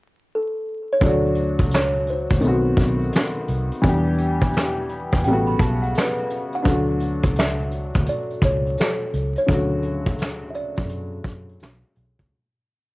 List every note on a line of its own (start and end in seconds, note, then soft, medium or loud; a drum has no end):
0.35 0.93 A4 medium
0.93 1.04 C#5 loud
1.01 1.56 D2 loud
1.01 2.40 F#3 medium
1.01 2.41 A3 medium
1.01 2.39 D4 medium
1.01 1.76 D5 loud
1.01 kick loud
1.01 closed hi-hat medium
1.08 2.43 F#4 medium
1.35 closed hi-hat medium
1.58 2.26 C#2 medium
1.58 kick medium
1.58 closed hi-hat soft
1.71 2.10 C#5 loud
1.71 snare loud
1.71 closed hi-hat medium
1.75 finger snap medium
1.95 closed hi-hat soft
2.07 3.46 C5 medium
2.07 closed hi-hat medium
2.29 2.42 D2 medium
2.29 kick medium
2.29 closed hi-hat soft
2.40 2.75 B1 loud
2.40 3.80 D#3 medium
2.40 3.81 A3 medium
2.40 3.82 B3 medium
2.40 closed hi-hat medium
2.46 3.83 C4 medium
2.46 3.84 F#4 medium
2.77 3.10 B1 medium
2.77 kick medium
2.77 closed hi-hat medium
3.01 closed hi-hat soft
3.13 finger snap medium
3.13 snare loud
3.13 closed hi-hat medium
3.48 3.70 C2 medium
3.48 closed hi-hat medium
3.71 closed hi-hat soft
3.82 5.09 E2 medium
3.82 5.21 E3 medium
3.82 5.22 G3 medium
3.82 5.23 B3 medium
3.82 kick loud
3.82 closed hi-hat medium
3.87 5.24 D4 medium
3.87 5.25 G4 medium
4.18 closed hi-hat medium
4.41 kick medium
4.41 closed hi-hat soft
4.53 snare loud
4.53 closed hi-hat medium
4.58 finger snap medium
4.89 closed hi-hat medium
5.11 5.24 E2 medium
5.11 kick medium
5.11 closed hi-hat soft
5.24 5.57 A1 medium
5.24 6.64 C#3 medium
5.24 6.65 G3 medium
5.24 5.46 G5 medium
5.24 closed hi-hat medium
5.29 6.65 A3 medium
5.29 6.66 B3 medium
5.29 6.67 F#4 medium
5.47 5.59 B5 medium
5.59 5.92 B1 medium
5.59 5.82 A5 medium
5.59 kick loud
5.59 closed hi-hat medium
5.82 6.62 F#5 medium
5.82 closed hi-hat soft
5.95 6.57 B4 medium
5.95 finger snap medium
5.95 snare loud
5.95 closed hi-hat medium
6.18 closed hi-hat soft
6.30 closed hi-hat medium
6.53 7.40 F#5 loud
6.53 closed hi-hat soft
6.63 7.20 D2 loud
6.63 9.44 F#3 medium
6.63 9.44 A3 medium
6.63 9.43 D4 medium
6.63 kick loud
6.63 closed hi-hat medium
6.70 9.46 F#4 medium
7.00 closed hi-hat medium
7.23 7.91 C#2 medium
7.23 kick medium
7.23 closed hi-hat soft
7.36 8.10 E5 medium
7.36 snare loud
7.36 closed hi-hat medium
7.40 finger snap medium
7.59 closed hi-hat soft
7.71 closed hi-hat medium
7.94 8.07 D2 medium
7.94 kick medium
7.94 closed hi-hat soft
8.06 8.25 D5 medium
8.06 closed hi-hat medium
8.30 closed hi-hat soft
8.42 8.75 C#2 medium
8.42 8.80 C#5 medium
8.42 kick loud
8.42 closed hi-hat medium
8.66 closed hi-hat soft
8.78 9.39 A4 medium
8.78 finger snap medium
8.78 snare loud
8.78 closed hi-hat medium
9.13 9.34 C#2 medium
9.13 closed hi-hat medium
9.35 10.54 C#5 medium
9.35 closed hi-hat soft
9.46 10.73 D2 medium
9.46 12.26 D3 medium
9.46 12.27 F#3 medium
9.46 12.27 A3 medium
9.46 kick loud
9.46 closed hi-hat medium
9.51 12.28 C#3 medium
9.51 12.29 F#4 medium
9.83 closed hi-hat medium
10.06 kick medium
10.06 closed hi-hat soft
10.19 snare loud
10.19 closed hi-hat medium
10.23 finger snap medium
10.50 10.55 E5 medium
10.50 closed hi-hat medium
10.55 11.57 D5 medium
10.76 11.22 F#2 medium
10.76 kick medium
10.76 closed hi-hat soft
10.89 closed hi-hat medium
11.24 11.57 F#2 medium
11.24 kick loud
11.24 closed hi-hat medium
11.49 closed hi-hat soft
11.60 11.82 B1 medium
11.60 finger snap medium
11.60 snare loud
11.60 closed hi-hat medium
11.83 closed hi-hat soft
11.95 12.17 B1 medium
11.95 closed hi-hat medium
12.18 12.30 C#2 medium
12.18 kick medium
12.18 closed hi-hat soft